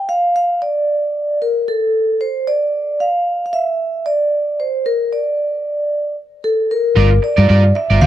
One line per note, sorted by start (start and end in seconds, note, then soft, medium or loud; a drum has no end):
0.09 0.35 F5 loud
0.36 0.60 F5 loud
0.62 1.37 D5 medium
1.42 1.68 A#4 medium
1.68 2.22 A4 medium
2.21 2.47 C5 medium
2.47 3.01 D5 medium
3.00 3.45 F5 medium
3.46 3.52 F5 medium
3.53 4.07 E5 medium
4.06 4.60 D5 medium
4.60 4.86 C5 medium
4.86 5.12 A#4 medium
5.13 6.14 D5 medium
6.44 6.71 A4 medium
6.71 7.25 A#4 medium
6.96 7.18 G1 loud
6.96 7.12 F4 medium
6.96 7.10 A#4 medium
6.96 7.09 D5 medium
7.11 muted clean electric guitar stroke medium
7.22 7.78 D5 loud
7.22 muted clean electric guitar stroke soft
7.37 7.47 G2 medium
7.37 7.47 F4 medium
7.37 7.47 A#4 medium
7.37 7.47 D5 medium
7.48 7.71 G2 loud
7.48 7.65 F4 medium
7.48 7.64 A#4 medium
7.48 7.63 D5 loud
7.64 muted clean electric guitar stroke medium
7.75 8.03 E5 loud
7.75 muted clean electric guitar stroke soft
7.90 8.00 G1 medium
7.90 8.00 F4 medium
7.90 8.01 A#4 medium
7.90 8.00 D5 medium
8.01 8.07 D2 loud
8.01 8.07 F4 medium
8.01 8.07 C5 loud
8.01 8.07 D5 loud
8.01 8.07 F5 loud